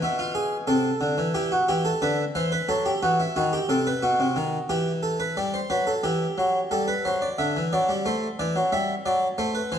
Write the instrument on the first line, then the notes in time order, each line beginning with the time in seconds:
harpsichord
0.02 B2 E4
0.19 F4
0.35 G#4
0.67 C3 A4
1.01 D3
1.18 E3
1.35 E3 G4
1.52 F#4
1.69 E3 G4
1.85 A4
2.02 D3 B4
2.35 E3 C5
2.52 B4
2.69 F#3 A4
2.86 G4
3.03 E3 F#4
3.20 E4
3.36 D#3 F#4
3.53 G4
3.69 C3 A4
3.87 B4
4.02 B2 F#4
4.20 C3
4.36 D#3
4.69 E3 G4
5.03 A4
5.20 B4
5.37 G3 D5
5.54 C5
5.70 F#3 B4
5.87 A4
6.04 E3 G4
6.38 F#3
6.71 G3 A4
6.88 B4
7.05 F#3 C5
7.22 D5
7.38 D3 E5
7.56 E3
7.73 F#3 D5
7.89 G3
8.06 A3 C5
8.39 E3 D5
8.56 F#3
8.73 G3 E5
9.06 F#3 D5
9.38 A3 C5
9.55 B4
9.72 E3 C5